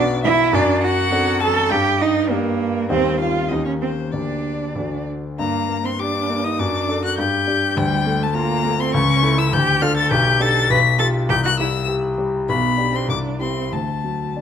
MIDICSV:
0, 0, Header, 1, 4, 480
1, 0, Start_track
1, 0, Key_signature, -2, "minor"
1, 0, Tempo, 591716
1, 432, Time_signature, 2, 2, 24, 8
1, 2355, Tempo, 617920
1, 4755, Tempo, 589971
1, 8111, Key_signature, 1, "major"
1, 10035, Tempo, 625652
1, 11515, End_track
2, 0, Start_track
2, 0, Title_t, "Violin"
2, 0, Program_c, 0, 40
2, 0, Note_on_c, 0, 74, 110
2, 186, Note_off_c, 0, 74, 0
2, 191, Note_on_c, 0, 76, 119
2, 426, Note_off_c, 0, 76, 0
2, 434, Note_on_c, 0, 74, 99
2, 658, Note_off_c, 0, 74, 0
2, 663, Note_on_c, 0, 78, 127
2, 1141, Note_on_c, 0, 81, 114
2, 1153, Note_off_c, 0, 78, 0
2, 1376, Note_on_c, 0, 79, 110
2, 1388, Note_off_c, 0, 81, 0
2, 1613, Note_off_c, 0, 79, 0
2, 1617, Note_on_c, 0, 75, 97
2, 1855, Note_on_c, 0, 70, 81
2, 1867, Note_off_c, 0, 75, 0
2, 2348, Note_on_c, 0, 72, 93
2, 2360, Note_off_c, 0, 70, 0
2, 2575, Note_on_c, 0, 77, 87
2, 2586, Note_off_c, 0, 72, 0
2, 2808, Note_on_c, 0, 75, 74
2, 2820, Note_off_c, 0, 77, 0
2, 2926, Note_off_c, 0, 75, 0
2, 2931, Note_on_c, 0, 73, 66
2, 2983, Note_off_c, 0, 73, 0
2, 3058, Note_on_c, 0, 72, 83
2, 3303, Note_on_c, 0, 74, 66
2, 3314, Note_off_c, 0, 72, 0
2, 4040, Note_off_c, 0, 74, 0
2, 4288, Note_on_c, 0, 82, 99
2, 4647, Note_on_c, 0, 84, 94
2, 4659, Note_off_c, 0, 82, 0
2, 4755, Note_on_c, 0, 86, 106
2, 4768, Note_off_c, 0, 84, 0
2, 5120, Note_on_c, 0, 87, 102
2, 5132, Note_off_c, 0, 86, 0
2, 5245, Note_on_c, 0, 86, 106
2, 5257, Note_off_c, 0, 87, 0
2, 5605, Note_off_c, 0, 86, 0
2, 5615, Note_on_c, 0, 90, 97
2, 5716, Note_off_c, 0, 90, 0
2, 5721, Note_on_c, 0, 91, 112
2, 6205, Note_on_c, 0, 79, 118
2, 6217, Note_off_c, 0, 91, 0
2, 6572, Note_on_c, 0, 81, 101
2, 6585, Note_off_c, 0, 79, 0
2, 6669, Note_on_c, 0, 82, 117
2, 6682, Note_off_c, 0, 81, 0
2, 7043, Note_on_c, 0, 84, 115
2, 7055, Note_off_c, 0, 82, 0
2, 7151, Note_off_c, 0, 84, 0
2, 7156, Note_on_c, 0, 85, 127
2, 7518, Note_on_c, 0, 88, 120
2, 7530, Note_off_c, 0, 85, 0
2, 7634, Note_on_c, 0, 91, 127
2, 7646, Note_off_c, 0, 88, 0
2, 7866, Note_on_c, 0, 89, 119
2, 7878, Note_off_c, 0, 91, 0
2, 7984, Note_off_c, 0, 89, 0
2, 7989, Note_on_c, 0, 93, 120
2, 8104, Note_off_c, 0, 93, 0
2, 8108, Note_on_c, 0, 91, 127
2, 8352, Note_on_c, 0, 93, 127
2, 8364, Note_off_c, 0, 91, 0
2, 8592, Note_on_c, 0, 95, 124
2, 8604, Note_off_c, 0, 93, 0
2, 8815, Note_off_c, 0, 95, 0
2, 8820, Note_on_c, 0, 93, 127
2, 8885, Note_off_c, 0, 93, 0
2, 9072, Note_on_c, 0, 91, 120
2, 9187, Note_off_c, 0, 91, 0
2, 9200, Note_on_c, 0, 90, 115
2, 9308, Note_off_c, 0, 90, 0
2, 9313, Note_on_c, 0, 88, 112
2, 9547, Note_off_c, 0, 88, 0
2, 10039, Note_on_c, 0, 83, 113
2, 10400, Note_on_c, 0, 84, 97
2, 10411, Note_off_c, 0, 83, 0
2, 10502, Note_off_c, 0, 84, 0
2, 10506, Note_on_c, 0, 86, 94
2, 10568, Note_off_c, 0, 86, 0
2, 10746, Note_on_c, 0, 84, 87
2, 10988, Note_on_c, 0, 81, 75
2, 11000, Note_off_c, 0, 84, 0
2, 11515, Note_off_c, 0, 81, 0
2, 11515, End_track
3, 0, Start_track
3, 0, Title_t, "Cello"
3, 0, Program_c, 1, 42
3, 195, Note_on_c, 1, 64, 127
3, 440, Note_on_c, 1, 62, 114
3, 453, Note_off_c, 1, 64, 0
3, 683, Note_on_c, 1, 66, 122
3, 695, Note_off_c, 1, 62, 0
3, 1152, Note_off_c, 1, 66, 0
3, 1161, Note_on_c, 1, 69, 127
3, 1393, Note_on_c, 1, 67, 127
3, 1405, Note_off_c, 1, 69, 0
3, 1632, Note_on_c, 1, 63, 113
3, 1644, Note_off_c, 1, 67, 0
3, 1870, Note_on_c, 1, 58, 92
3, 1882, Note_off_c, 1, 63, 0
3, 2353, Note_off_c, 1, 58, 0
3, 2358, Note_on_c, 1, 60, 112
3, 2585, Note_off_c, 1, 60, 0
3, 2590, Note_on_c, 1, 65, 92
3, 2836, Note_on_c, 1, 63, 81
3, 2847, Note_off_c, 1, 65, 0
3, 2947, Note_off_c, 1, 63, 0
3, 2951, Note_on_c, 1, 61, 85
3, 2999, Note_off_c, 1, 61, 0
3, 3065, Note_on_c, 1, 60, 84
3, 3128, Note_off_c, 1, 60, 0
3, 3308, Note_on_c, 1, 62, 71
3, 4028, Note_off_c, 1, 62, 0
3, 4287, Note_on_c, 1, 58, 86
3, 4614, Note_off_c, 1, 58, 0
3, 4633, Note_on_c, 1, 60, 84
3, 4681, Note_off_c, 1, 60, 0
3, 4762, Note_on_c, 1, 62, 89
3, 5116, Note_on_c, 1, 63, 82
3, 5128, Note_off_c, 1, 62, 0
3, 5247, Note_on_c, 1, 62, 95
3, 5260, Note_off_c, 1, 63, 0
3, 5596, Note_off_c, 1, 62, 0
3, 5601, Note_on_c, 1, 66, 83
3, 5734, Note_on_c, 1, 67, 95
3, 5746, Note_off_c, 1, 66, 0
3, 6208, Note_off_c, 1, 67, 0
3, 6215, Note_on_c, 1, 55, 99
3, 6570, Note_on_c, 1, 57, 83
3, 6582, Note_off_c, 1, 55, 0
3, 6686, Note_on_c, 1, 58, 96
3, 6698, Note_off_c, 1, 57, 0
3, 7032, Note_off_c, 1, 58, 0
3, 7037, Note_on_c, 1, 60, 94
3, 7150, Note_on_c, 1, 61, 106
3, 7162, Note_off_c, 1, 60, 0
3, 7509, Note_on_c, 1, 64, 92
3, 7522, Note_off_c, 1, 61, 0
3, 7625, Note_off_c, 1, 64, 0
3, 7630, Note_on_c, 1, 67, 120
3, 7871, Note_on_c, 1, 65, 107
3, 7883, Note_off_c, 1, 67, 0
3, 7985, Note_off_c, 1, 65, 0
3, 7990, Note_on_c, 1, 69, 110
3, 8104, Note_on_c, 1, 67, 111
3, 8116, Note_off_c, 1, 69, 0
3, 8353, Note_on_c, 1, 69, 118
3, 8365, Note_off_c, 1, 67, 0
3, 8586, Note_off_c, 1, 69, 0
3, 8591, Note_on_c, 1, 71, 114
3, 8656, Note_off_c, 1, 71, 0
3, 8819, Note_on_c, 1, 69, 114
3, 8884, Note_off_c, 1, 69, 0
3, 9066, Note_on_c, 1, 67, 121
3, 9114, Note_off_c, 1, 67, 0
3, 9195, Note_on_c, 1, 66, 93
3, 9242, Note_off_c, 1, 66, 0
3, 9318, Note_on_c, 1, 64, 91
3, 9383, Note_off_c, 1, 64, 0
3, 10039, Note_on_c, 1, 59, 87
3, 10362, Note_off_c, 1, 59, 0
3, 10383, Note_on_c, 1, 60, 70
3, 10507, Note_on_c, 1, 62, 74
3, 10519, Note_off_c, 1, 60, 0
3, 10755, Note_on_c, 1, 60, 75
3, 10766, Note_off_c, 1, 62, 0
3, 10992, Note_on_c, 1, 57, 66
3, 11003, Note_off_c, 1, 60, 0
3, 11515, Note_off_c, 1, 57, 0
3, 11515, End_track
4, 0, Start_track
4, 0, Title_t, "Grand piano"
4, 0, Program_c, 2, 0
4, 0, Control_c, 2, 64, 127
4, 0, Note_on_c, 2, 35, 91
4, 0, Note_on_c, 2, 59, 76
4, 0, Note_on_c, 2, 62, 64
4, 0, Note_on_c, 2, 66, 78
4, 402, Note_off_c, 2, 59, 0
4, 403, Note_off_c, 2, 62, 0
4, 405, Note_off_c, 2, 66, 0
4, 430, Note_on_c, 2, 42, 106
4, 446, Control_c, 2, 64, 0
4, 451, Note_off_c, 2, 35, 0
4, 584, Control_c, 2, 64, 127
4, 892, Note_off_c, 2, 42, 0
4, 901, Note_on_c, 2, 60, 64
4, 907, Note_on_c, 2, 69, 70
4, 908, Note_on_c, 2, 62, 64
4, 1348, Note_off_c, 2, 60, 0
4, 1352, Note_off_c, 2, 62, 0
4, 1352, Note_off_c, 2, 69, 0
4, 1382, Note_on_c, 2, 43, 93
4, 1401, Control_c, 2, 64, 0
4, 1529, Control_c, 2, 64, 127
4, 1850, Note_off_c, 2, 43, 0
4, 1864, Note_on_c, 2, 58, 56
4, 1866, Note_on_c, 2, 62, 61
4, 1869, Note_on_c, 2, 67, 60
4, 2321, Note_off_c, 2, 58, 0
4, 2322, Note_off_c, 2, 62, 0
4, 2323, Note_off_c, 2, 67, 0
4, 2354, Note_on_c, 2, 39, 84
4, 2355, Note_on_c, 2, 55, 60
4, 2356, Note_on_c, 2, 60, 62
4, 2358, Note_on_c, 2, 67, 60
4, 2369, Control_c, 2, 64, 0
4, 2482, Control_c, 2, 64, 127
4, 2799, Note_off_c, 2, 55, 0
4, 2799, Note_off_c, 2, 60, 0
4, 2800, Note_off_c, 2, 67, 0
4, 2815, Note_off_c, 2, 39, 0
4, 2829, Note_on_c, 2, 39, 66
4, 2831, Note_on_c, 2, 58, 51
4, 2834, Note_on_c, 2, 61, 47
4, 2835, Note_on_c, 2, 67, 48
4, 2846, Control_c, 2, 64, 0
4, 2998, Control_c, 2, 64, 127
4, 3283, Note_off_c, 2, 58, 0
4, 3285, Note_off_c, 2, 61, 0
4, 3285, Note_off_c, 2, 67, 0
4, 3299, Note_off_c, 2, 39, 0
4, 3310, Note_on_c, 2, 38, 55
4, 3310, Note_on_c, 2, 58, 41
4, 3311, Note_on_c, 2, 62, 46
4, 3316, Note_on_c, 2, 67, 44
4, 3329, Control_c, 2, 64, 0
4, 3480, Control_c, 2, 64, 127
4, 3769, Note_off_c, 2, 58, 0
4, 3769, Note_off_c, 2, 62, 0
4, 3772, Note_off_c, 2, 67, 0
4, 3783, Note_off_c, 2, 38, 0
4, 3795, Note_on_c, 2, 38, 61
4, 3797, Note_on_c, 2, 57, 39
4, 3800, Note_on_c, 2, 62, 41
4, 3808, Note_on_c, 2, 66, 38
4, 3817, Control_c, 2, 64, 0
4, 3947, Control_c, 2, 64, 127
4, 4252, Note_off_c, 2, 57, 0
4, 4253, Note_off_c, 2, 62, 0
4, 4257, Note_off_c, 2, 66, 0
4, 4267, Note_off_c, 2, 38, 0
4, 4287, Note_on_c, 2, 43, 79
4, 4300, Control_c, 2, 64, 0
4, 4437, Control_c, 2, 64, 127
4, 4521, Note_on_c, 2, 58, 59
4, 4755, Note_on_c, 2, 67, 60
4, 4900, Note_off_c, 2, 58, 0
4, 5001, Note_on_c, 2, 58, 59
4, 5142, Note_off_c, 2, 67, 0
4, 5210, Note_off_c, 2, 43, 0
4, 5241, Note_off_c, 2, 58, 0
4, 5242, Note_on_c, 2, 42, 83
4, 5253, Control_c, 2, 64, 0
4, 5403, Control_c, 2, 64, 127
4, 5483, Note_on_c, 2, 62, 57
4, 5487, Note_on_c, 2, 69, 67
4, 5700, Note_off_c, 2, 62, 0
4, 5702, Note_off_c, 2, 69, 0
4, 5710, Note_off_c, 2, 42, 0
4, 5721, Note_on_c, 2, 43, 80
4, 5738, Control_c, 2, 64, 0
4, 5866, Control_c, 2, 64, 127
4, 5958, Note_on_c, 2, 62, 60
4, 5961, Note_on_c, 2, 67, 64
4, 6176, Note_off_c, 2, 62, 0
4, 6177, Note_off_c, 2, 67, 0
4, 6187, Note_off_c, 2, 43, 0
4, 6201, Note_on_c, 2, 38, 95
4, 6218, Control_c, 2, 64, 0
4, 6335, Control_c, 2, 64, 127
4, 6433, Note_on_c, 2, 57, 69
4, 6673, Note_on_c, 2, 65, 70
4, 6818, Note_off_c, 2, 57, 0
4, 6913, Note_on_c, 2, 57, 71
4, 7059, Note_off_c, 2, 65, 0
4, 7127, Note_off_c, 2, 38, 0
4, 7154, Note_off_c, 2, 57, 0
4, 7154, Note_on_c, 2, 37, 99
4, 7171, Control_c, 2, 64, 0
4, 7280, Control_c, 2, 64, 127
4, 7389, Note_on_c, 2, 64, 68
4, 7390, Note_on_c, 2, 69, 72
4, 7606, Note_off_c, 2, 64, 0
4, 7606, Note_off_c, 2, 69, 0
4, 7617, Note_off_c, 2, 37, 0
4, 7632, Note_on_c, 2, 38, 84
4, 7646, Control_c, 2, 64, 0
4, 7780, Control_c, 2, 64, 127
4, 7867, Note_on_c, 2, 62, 78
4, 7868, Note_on_c, 2, 69, 86
4, 8084, Note_off_c, 2, 62, 0
4, 8084, Note_off_c, 2, 69, 0
4, 8096, Note_off_c, 2, 38, 0
4, 8104, Note_on_c, 2, 35, 106
4, 8125, Control_c, 2, 64, 0
4, 8266, Control_c, 2, 64, 127
4, 8341, Note_on_c, 2, 62, 68
4, 8344, Note_on_c, 2, 67, 73
4, 8558, Note_off_c, 2, 62, 0
4, 8560, Note_off_c, 2, 67, 0
4, 8568, Note_off_c, 2, 35, 0
4, 8585, Note_on_c, 2, 35, 92
4, 8601, Control_c, 2, 64, 0
4, 8716, Control_c, 2, 64, 127
4, 8817, Note_on_c, 2, 65, 65
4, 8825, Note_on_c, 2, 67, 68
4, 9038, Note_off_c, 2, 65, 0
4, 9042, Note_off_c, 2, 67, 0
4, 9052, Note_off_c, 2, 35, 0
4, 9065, Note_on_c, 2, 36, 91
4, 9081, Control_c, 2, 64, 0
4, 9204, Control_c, 2, 64, 127
4, 9312, Note_on_c, 2, 55, 65
4, 9546, Note_on_c, 2, 67, 71
4, 9696, Note_off_c, 2, 55, 0
4, 9791, Note_on_c, 2, 55, 63
4, 9934, Note_off_c, 2, 67, 0
4, 10003, Note_off_c, 2, 36, 0
4, 10033, Note_off_c, 2, 55, 0
4, 10042, Note_on_c, 2, 35, 85
4, 10049, Control_c, 2, 64, 0
4, 10188, Control_c, 2, 64, 127
4, 10261, Note_on_c, 2, 62, 53
4, 10263, Note_on_c, 2, 67, 61
4, 10476, Note_off_c, 2, 62, 0
4, 10477, Note_off_c, 2, 67, 0
4, 10492, Note_off_c, 2, 35, 0
4, 10495, Note_on_c, 2, 36, 64
4, 10517, Control_c, 2, 64, 0
4, 10670, Control_c, 2, 64, 127
4, 10732, Note_on_c, 2, 64, 51
4, 10736, Note_on_c, 2, 67, 51
4, 10956, Note_off_c, 2, 64, 0
4, 10958, Note_off_c, 2, 67, 0
4, 10968, Note_off_c, 2, 36, 0
4, 10986, Note_on_c, 2, 38, 56
4, 11000, Control_c, 2, 64, 0
4, 11144, Control_c, 2, 64, 127
4, 11229, Note_on_c, 2, 54, 45
4, 11479, Note_on_c, 2, 62, 49
4, 11515, Note_off_c, 2, 38, 0
4, 11515, Note_off_c, 2, 54, 0
4, 11515, Note_off_c, 2, 62, 0
4, 11515, End_track
0, 0, End_of_file